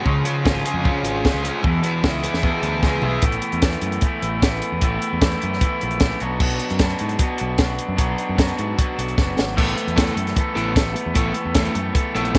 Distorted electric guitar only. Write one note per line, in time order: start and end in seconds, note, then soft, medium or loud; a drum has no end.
0.00 0.64 G#4 medium
0.05 1.04 C#3 medium
0.24 0.83 C#4 medium
0.45 1.02 F4 medium
0.65 1.22 G#4 medium
0.84 1.64 C#4 medium
1.03 1.42 F4 medium
1.24 1.64 G#4 medium
1.43 1.63 F4 medium
1.62 2.62 E3 medium
1.83 2.42 B3 medium
2.03 2.61 E4 medium
2.23 2.82 G#4 medium
2.43 3.23 B3 medium
2.62 3.02 E4 medium
2.83 3.23 G#4 medium
3.03 3.23 E4 medium
9.57 9.77 A3 medium
9.57 9.76 B3 loud
9.57 9.76 E4 medium
9.57 9.75 A4 loud
9.76 muted distorted electric guitar stroke soft
9.96 10.16 A3 medium
9.96 10.15 B3 medium
9.96 10.15 E4 medium
9.96 10.14 A4 loud
10.15 muted distorted electric guitar stroke medium
10.36 muted distorted electric guitar stroke soft
10.55 10.74 A3 medium
10.55 10.74 B3 medium
10.55 10.74 E4 loud
10.55 10.74 A4 medium
10.75 muted distorted electric guitar stroke soft
10.94 muted distorted electric guitar stroke medium
11.14 11.35 A3 loud
11.14 11.35 B3 medium
11.14 11.34 E4 loud
11.14 11.34 A4 loud
11.35 muted distorted electric guitar stroke soft
11.55 11.75 A3 medium
11.55 11.75 B3 loud
11.55 11.74 E4 medium
11.55 11.74 A4 loud
11.75 muted distorted electric guitar stroke medium
11.94 muted distorted electric guitar stroke soft
12.15 12.32 A3 medium
12.15 12.33 B3 medium
12.15 12.33 E4 medium
12.15 12.34 A4 loud
12.34 muted distorted electric guitar stroke soft